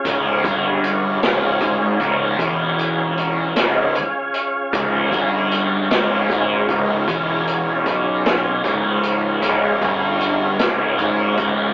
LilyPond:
<<
  \new Staff \with { instrumentName = "Tonewheel organ" } { \time 6/8 \key des \lydian \tempo 4. = 51 <des' f' aes'>2.~ | <des' f' aes'>2.~ | <des' f' aes'>2.~ | <des' f' aes'>2.~ |
<des' f' aes'>2. | }
  \new Staff \with { instrumentName = "Distorted electric guitar" } { \clef bass \time 6/8 \key des \lydian des,8 g,4 des,8 aes,8 des,8 | fes,4. des,8 r4 | des,8 g,4 des,8 aes,8 des,8 | fes,4 ces4 des,4 |
des,8 g,4 des,8 aes,8 des,8 | }
  \new Staff \with { instrumentName = "Picked electric bass" } { \clef bass \time 6/8 \key des \lydian des,,8 g,,4 des,,8 aes,,8 des,,8 | fes,,4. des,,8 r4 | des,,8 g,,4 des,,8 aes,,8 des,,8 | fes,,4 ces,4 des,,4 |
des,,8 g,,4 des,,8 aes,,8 des,,8 | }
  \new DrumStaff \with { instrumentName = "Drums" } \drummode { \time 6/8 <hh bd>8 <hh bd>8 hh8 <hh sn>8 <hh bd>8 <hh bd>8 | <hh bd>8 hh8 hh8 <hh sn>8 hh8 hh8 | <hh bd>8 <hh bd>8 hh8 <hh sn>8 <hh bd>8 <hh bd>8 | <hh bd>8 hh8 <hh bd>8 <hh sn>8 <hh bd>8 hh8 |
<hh bd>8 <hh bd>8 hh8 <hh sn>8 <hh bd>8 <hh bd>8 | }
>>